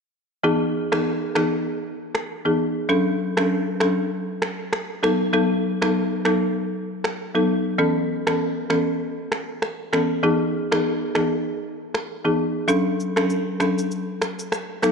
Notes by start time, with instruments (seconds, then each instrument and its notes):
0.43 marimba E3 B3 D#4 G#4
0.92 marimba E3 B3 D#4 G#4, finger snap, cross-stick
1.35 marimba E3 B3 D#4 G#4, finger snap, cross-stick
2.15 finger snap, cross-stick
2.45 marimba E3 B3 D#4 G#4
2.89 marimba F#3 C#4 D4 A4
3.37 marimba F#3 C#4 D4 A4, finger snap, cross-stick
3.80 marimba F#3 C#4 D4 A4, finger snap, cross-stick
4.42 finger snap, cross-stick
4.73 finger snap, cross-stick
5.03 marimba F#3 B3 D#4 A4, finger snap, cross-stick
5.33 marimba F#3 B3 D#4 A4
5.82 marimba F#3 B3 D#4 A4, finger snap, cross-stick
6.25 marimba F#3 B3 D#4 A4, finger snap, cross-stick
7.04 finger snap, cross-stick
7.35 marimba F#3 B3 D#4 A4
7.78 marimba E3 B3 C#4 A4
8.27 marimba E3 B3 C#4 A4, finger snap, cross-stick
8.70 marimba E3 B3 C#4 A4, finger snap, cross-stick
9.32 finger snap, cross-stick
9.62 finger snap, cross-stick
9.93 marimba E3 B3 C#4 A4, finger snap, cross-stick
10.23 marimba E3 B3 D#4 G#4
10.72 marimba E3 B3 D#4 G#4, finger snap, cross-stick
11.15 marimba E3 B3 D#4 G#4, finger snap, cross-stick
11.94 finger snap, cross-stick
12.24 marimba E3 B3 D#4 G#4
12.68 marimba F#3 C#4 D4 A4, shaker
13.00 shaker
13.16 marimba F#3 C#4 D4 A4, finger snap, cross-stick, shaker
13.30 shaker
13.60 marimba F#3 C#4 D4 A4, finger snap, cross-stick, shaker
13.78 shaker
13.91 shaker
14.22 finger snap, cross-stick, shaker
14.39 shaker
14.52 finger snap, cross-stick, shaker
14.82 marimba F#3 B3 D#4 A4, finger snap, cross-stick, shaker